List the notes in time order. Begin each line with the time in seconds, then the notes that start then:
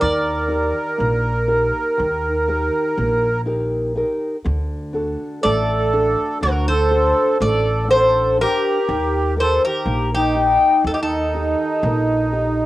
0.00 D#2 D#3 A#4 D5
0.48 D#4 G4 A#4
0.98 A#1 A#3
1.48 D#4 G4 A#4
1.97 D#2 D#3
2.48 D#4 G4 A#4
2.97 A#1 A#3
3.46 D#4 G4 A#4
3.96 D#4 G4 A#4
4.45 D2 D3
4.93 D4 F#4 A4
5.43 A1 A3 A4 D5
5.93 D4 F#4 A4
6.41 D2 D3 A#4
6.45 F#4
6.68 A4 C5
6.91 D4 F#4 A4
7.40 A1 A3 D5
7.45 A4
7.88 D4 C5 F#5
7.94 A4
8.38 D4 G4 A#4
8.88 D#2 D#3
9.37 D#4 G4 A#4 C5
9.42 A4
9.65 G4 A#4
9.86 A#1 A#3
10.14 D#4 G4
10.35 D#4 G4
10.84 D#2 D#3 A4
10.91 D#4 G4
11.02 D#4 A4
11.34 D#4 G4
11.83 A#1 A#3
12.33 D#4 G4